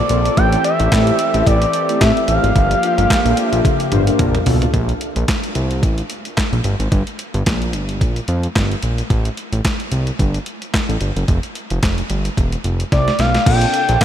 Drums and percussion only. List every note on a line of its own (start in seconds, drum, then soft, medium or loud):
0.09 closed hi-hat medium
0.26 closed hi-hat medium
0.37 kick loud
0.37 closed hi-hat medium
0.53 closed hi-hat medium
0.64 closed hi-hat medium
0.80 closed hi-hat medium
0.92 kick loud
0.92 snare loud
0.92 clap loud
0.92 closed hi-hat loud
1.07 closed hi-hat medium
1.19 closed hi-hat medium
1.34 closed hi-hat medium
1.47 kick loud
1.47 closed hi-hat loud
1.62 closed hi-hat medium
1.73 closed hi-hat medium
1.89 closed hi-hat medium
2.01 kick loud
2.01 snare loud
2.01 clap medium
2.01 closed hi-hat medium
2.17 closed hi-hat soft
2.28 closed hi-hat medium
2.44 closed hi-hat soft
2.56 kick loud
2.56 closed hi-hat medium
2.71 closed hi-hat medium
2.83 closed hi-hat medium
2.98 closed hi-hat medium
3.10 kick loud
3.10 snare loud
3.10 clap loud
3.10 closed hi-hat loud
3.26 closed hi-hat medium
3.37 closed hi-hat medium
3.53 closed hi-hat medium
3.65 kick loud
3.65 closed hi-hat medium
3.65 high tom medium
3.80 closed hi-hat medium
3.92 closed hi-hat medium
3.92 mid tom medium
4.07 closed hi-hat medium
4.19 kick loud
4.19 closed hi-hat loud
4.19 mid tom medium
4.35 closed hi-hat soft
4.35 mid tom medium
4.46 floor tom loud
4.46 open hi-hat medium
4.62 closed hi-hat medium
4.62 floor tom loud
4.74 kick medium
4.74 closed hi-hat medium
4.89 closed hi-hat soft
5.01 closed hi-hat medium
5.16 closed hi-hat medium
5.28 kick loud
5.28 snare loud
5.28 clap loud
5.28 closed hi-hat loud
5.44 closed hi-hat medium
5.55 closed hi-hat medium
5.71 closed hi-hat medium
5.83 kick loud
5.83 closed hi-hat medium
5.98 closed hi-hat soft
6.10 closed hi-hat medium
6.25 closed hi-hat soft
6.37 kick loud
6.37 snare medium
6.37 clap medium
6.37 closed hi-hat medium
6.53 closed hi-hat soft
6.64 closed hi-hat medium
6.80 closed hi-hat soft
6.92 kick loud
6.92 closed hi-hat medium
7.07 closed hi-hat medium
7.19 closed hi-hat medium
7.34 closed hi-hat medium
7.46 kick loud
7.46 snare loud
7.46 clap loud
7.46 closed hi-hat loud
7.62 closed hi-hat soft
7.73 closed hi-hat medium
7.89 closed hi-hat soft
8.01 kick loud
8.01 closed hi-hat medium
8.16 closed hi-hat soft
8.28 closed hi-hat medium
8.43 closed hi-hat medium
8.56 kick loud
8.56 snare loud
8.56 clap medium
8.56 closed hi-hat medium
8.72 closed hi-hat soft
8.83 closed hi-hat medium
8.98 closed hi-hat soft
9.10 kick loud
9.10 closed hi-hat medium
9.25 closed hi-hat soft
9.37 closed hi-hat medium
9.53 closed hi-hat medium
9.65 kick loud
9.65 snare loud
9.65 clap loud
9.65 closed hi-hat loud
9.80 closed hi-hat medium
9.92 closed hi-hat medium
10.07 closed hi-hat medium
10.19 kick loud
10.19 closed hi-hat medium
10.34 closed hi-hat soft
10.46 closed hi-hat medium
10.62 closed hi-hat soft
10.74 kick loud
10.74 snare loud
10.74 clap medium
10.74 closed hi-hat medium
10.90 closed hi-hat soft
11.01 closed hi-hat medium
11.17 closed hi-hat medium
11.28 kick loud
11.28 closed hi-hat medium
11.43 closed hi-hat soft
11.55 closed hi-hat medium
11.70 closed hi-hat medium
11.83 kick loud
11.83 snare loud
11.83 clap loud
11.83 closed hi-hat loud
11.98 closed hi-hat medium
12.10 closed hi-hat medium
12.25 closed hi-hat medium
12.37 kick loud
12.37 closed hi-hat medium
12.52 closed hi-hat soft
12.64 closed hi-hat medium
12.80 closed hi-hat soft
12.92 kick loud
12.92 snare soft
12.92 closed hi-hat medium
13.08 snare medium
13.08 closed hi-hat soft
13.19 snare medium
13.19 closed hi-hat medium
13.34 snare medium
13.34 closed hi-hat soft
13.46 kick loud
13.46 closed hi-hat medium
13.46 crash loud
13.61 closed hi-hat medium
13.74 closed hi-hat medium
13.89 closed hi-hat medium
14.01 kick loud
14.01 snare loud
14.01 closed hi-hat loud